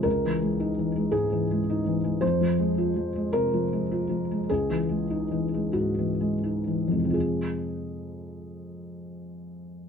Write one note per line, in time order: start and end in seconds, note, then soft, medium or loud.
0.03 2.17 C#2 soft
0.03 1.13 A#4 medium
0.25 0.53 E3 soft
0.42 0.71 G#3 soft
0.60 0.89 D#4 soft
0.79 1.07 E3 soft
0.96 1.24 G#3 soft
1.11 1.42 G#2 soft
1.11 2.20 G#4 medium
1.32 1.61 E3 soft
1.51 1.79 G#3 soft
1.70 1.97 D#4 soft
1.86 2.15 E3 soft
2.04 2.22 G#3 soft
2.21 4.44 F2 soft
2.21 3.32 C5 medium
2.41 2.70 F3 soft
2.59 2.88 G#3 soft
2.78 3.07 F4 soft
2.96 3.25 F3 soft
3.16 3.45 G#3 soft
3.33 3.63 C3 soft
3.33 4.48 A#4 medium
3.53 3.83 F3 soft
3.73 4.02 G#3 soft
3.91 4.21 F4 soft
4.09 4.40 F3 soft
4.31 4.50 G#3 soft
4.49 7.12 C#2 soft
4.49 5.75 G#4 medium
4.70 5.02 E3 soft
4.89 5.22 G#3 soft
5.10 5.44 D#4 soft
5.31 5.66 E3 soft
5.54 5.89 G#3 soft
5.73 6.11 G#2 soft
5.73 7.14 F#4 soft
5.98 6.35 E3 soft
6.21 6.58 G#3 soft
6.44 6.82 D#4 soft
6.67 7.05 E3 soft
6.88 9.89 F2 soft
6.88 6.98 G#3 soft
6.93 9.89 C3 soft
6.99 9.89 G#3 soft
7.05 9.89 C4 soft
7.10 9.89 F4 soft
7.10 9.89 G#4 soft